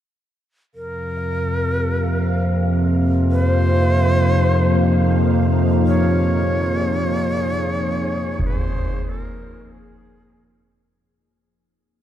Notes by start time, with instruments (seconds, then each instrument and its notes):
0.72 synth drone F2 C3, ambient pad F3, shakuhachi A#4, synth texture F5
1.40 ambient pad A#3
2.63 ambient pad D#4
3.31 shakuhachi C5
5.35 ambient pad G#4
5.87 shakuhachi C#5
8.39 concert bass drum
8.47 shakuhachi B4
8.58 shakuhachi C5
9.09 shakuhachi A4
9.22 shakuhachi A#4
9.72 shakuhachi G#4